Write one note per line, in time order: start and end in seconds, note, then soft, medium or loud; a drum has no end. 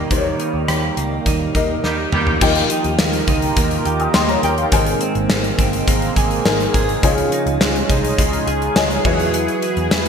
0.00 0.11 D#3 medium
0.00 0.65 D#3 medium
0.00 2.37 D#3 medium
0.00 2.37 G3 medium
0.00 0.97 A#3 medium
0.00 2.37 A#3 medium
0.00 0.10 D#4 medium
0.00 0.40 D#4 medium
0.00 0.11 G4 medium
0.00 0.68 G4 medium
0.00 0.11 A#4 medium
0.00 2.43 A#5 medium
0.10 0.32 D#2 medium
0.10 2.41 D#3 medium
0.10 1.13 D#4 medium
0.10 1.13 G4 medium
0.10 1.13 A#4 medium
0.10 0.18 C5 medium
0.10 kick loud
0.10 closed hi-hat medium
0.18 1.17 C#5 medium
0.40 1.26 D#4 soft
0.40 closed hi-hat medium
0.54 0.64 D#2 medium
0.68 0.89 D#2 medium
0.68 3.85 G4 medium
0.68 cross-stick loud
0.68 closed hi-hat medium
0.97 1.18 C#2 medium
0.97 1.55 A#3 medium
0.97 closed hi-hat medium
1.26 1.47 D#2 loud
1.26 1.84 D#4 medium
1.26 kick medium
1.26 closed hi-hat medium
1.55 1.76 D#2 loud
1.55 2.13 A#3 medium
1.55 2.32 D#4 medium
1.55 2.32 G4 medium
1.55 2.32 A#4 medium
1.55 2.32 D#5 medium
1.55 kick medium
1.55 closed hi-hat medium
1.84 2.05 D#2 medium
1.84 1.96 D#3 medium
1.84 1.96 G3 medium
1.84 1.96 A#3 medium
1.84 2.70 D#4 medium
1.84 1.96 G4 medium
1.84 snare medium
2.12 2.33 D#2 medium
2.12 2.31 D#3 medium
2.12 2.31 G3 medium
2.12 2.31 A#3 medium
2.12 2.99 A#3 medium
2.12 2.31 G4 loud
2.12 mid tom medium
2.27 floor tom medium
2.41 2.62 D#2 loud
2.41 3.24 D#3 medium
2.41 4.70 D#3 medium
2.41 4.72 F3 medium
2.41 4.70 D#4 medium
2.41 3.44 F4 medium
2.41 4.70 F4 medium
2.41 3.44 G4 medium
2.41 4.70 G4 medium
2.41 3.44 A#4 medium
2.41 4.70 A#4 medium
2.41 3.44 D#5 medium
2.41 3.44 G5 medium
2.41 kick loud
2.41 crash loud
2.56 closed hi-hat medium
2.70 3.28 D#4 medium
2.70 closed hi-hat medium
2.84 2.95 D#2 medium
2.84 closed hi-hat soft
2.99 3.20 D#2 loud
2.99 3.57 A#3 medium
2.99 snare loud
2.99 tambourine medium
3.13 closed hi-hat medium
3.28 3.48 C#2 loud
3.28 5.01 D#4 medium
3.28 kick loud
3.28 closed hi-hat medium
3.42 closed hi-hat medium
3.57 3.77 D#2 loud
3.57 4.14 A#3 medium
3.57 kick loud
3.57 closed hi-hat medium
3.71 closed hi-hat medium
3.85 4.06 D#2 loud
3.85 4.43 G4 medium
3.85 closed hi-hat medium
4.00 4.14 G5 medium
4.00 4.14 D#6 medium
4.00 closed hi-hat soft
4.14 4.35 D#2 loud
4.14 5.04 A#3 medium
4.14 4.29 D#5 medium
4.14 4.28 C6 medium
4.14 snare loud
4.14 tambourine medium
4.29 4.43 C#5 medium
4.29 4.43 A#5 medium
4.29 closed hi-hat soft
4.43 4.64 D#2 medium
4.43 4.78 G4 medium
4.43 4.58 A#4 medium
4.43 4.57 G5 medium
4.43 closed hi-hat medium
4.58 4.85 F5 medium
4.58 closed hi-hat soft
4.72 4.93 G#1 loud
4.72 5.55 G#2 medium
4.72 7.03 D#3 medium
4.72 7.01 G#3 medium
4.72 7.01 A#3 medium
4.72 7.01 C4 medium
4.72 5.75 D#4 medium
4.72 5.75 G#4 medium
4.72 5.75 A#4 medium
4.72 5.75 C5 medium
4.72 5.75 G#5 loud
4.72 kick loud
4.72 closed hi-hat loud
4.86 closed hi-hat medium
5.01 5.58 C4 medium
5.01 closed hi-hat medium
5.15 5.26 G#1 loud
5.15 closed hi-hat soft
5.30 5.51 G#1 loud
5.30 5.87 A#3 medium
5.30 snare loud
5.30 tambourine medium
5.44 closed hi-hat medium
5.59 5.79 G1 loud
5.59 7.09 C4 medium
5.59 kick medium
5.59 closed hi-hat medium
5.73 closed hi-hat medium
5.88 6.08 G#1 loud
5.88 6.44 A#3 medium
5.88 kick loud
5.88 closed hi-hat loud
6.02 closed hi-hat soft
6.16 6.37 G#1 loud
6.16 6.74 G#4 medium
6.16 kick medium
6.16 closed hi-hat medium
6.31 closed hi-hat medium
6.45 6.66 G#1 loud
6.45 7.09 A#3 medium
6.45 6.96 D#4 medium
6.45 6.97 G#4 medium
6.45 6.97 A#4 medium
6.45 6.97 C5 medium
6.45 6.97 G#5 loud
6.45 snare loud
6.45 tambourine medium
6.60 closed hi-hat medium
6.74 6.95 G#1 loud
6.74 8.47 G#4 medium
6.74 kick loud
6.74 closed hi-hat medium
6.89 closed hi-hat soft
7.03 7.24 C#2 loud
7.03 9.03 C#3 medium
7.03 7.86 C#3 medium
7.03 9.05 F3 medium
7.03 9.03 C#4 medium
7.03 9.03 D#4 medium
7.03 8.05 F4 medium
7.03 9.03 F4 medium
7.03 8.06 G#4 medium
7.03 10.08 G#4 medium
7.03 8.06 C#5 medium
7.03 8.06 D#5 medium
7.03 8.06 G#5 loud
7.03 kick loud
7.03 closed hi-hat loud
7.18 closed hi-hat medium
7.32 7.89 D#4 medium
7.32 closed hi-hat medium
7.46 7.57 C#2 loud
7.46 closed hi-hat medium
7.61 7.81 C#2 loud
7.61 8.18 G#3 medium
7.61 snare loud
7.61 tambourine medium
7.76 closed hi-hat medium
7.89 8.10 C2 medium
7.89 9.11 D#4 medium
7.89 kick loud
7.89 closed hi-hat medium
8.05 closed hi-hat medium
8.18 8.39 C#2 loud
8.18 8.76 G#3 medium
8.18 kick loud
8.18 closed hi-hat loud
8.33 closed hi-hat medium
8.47 8.68 C#2 loud
8.47 9.37 G#4 medium
8.47 closed hi-hat medium
8.62 closed hi-hat medium
8.75 8.97 C#2 loud
8.75 9.37 G#3 medium
8.75 9.05 F4 medium
8.75 9.03 G#4 medium
8.75 9.05 C#5 medium
8.75 9.05 D#5 medium
8.75 9.04 G#5 loud
8.75 snare loud
8.75 tambourine medium
8.91 closed hi-hat medium
9.04 9.46 E2 loud
9.04 10.08 E3 medium
9.04 9.87 E3 medium
9.04 9.33 F#3 medium
9.04 10.08 E4 medium
9.04 10.07 F#4 medium
9.04 10.08 F#4 medium
9.04 10.07 G#4 medium
9.04 10.08 B4 medium
9.04 10.07 B4 medium
9.04 10.07 E5 medium
9.04 10.08 G#5 loud
9.04 kick loud
9.04 crash medium
9.20 closed hi-hat medium
9.34 10.08 F#3 medium
9.34 closed hi-hat loud
9.48 closed hi-hat medium
9.62 10.08 E4 medium
9.62 closed hi-hat medium
9.77 9.87 E2 loud
9.77 closed hi-hat soft
9.91 10.08 E2 loud
9.91 10.08 B3 medium
9.91 snare loud
9.91 tambourine medium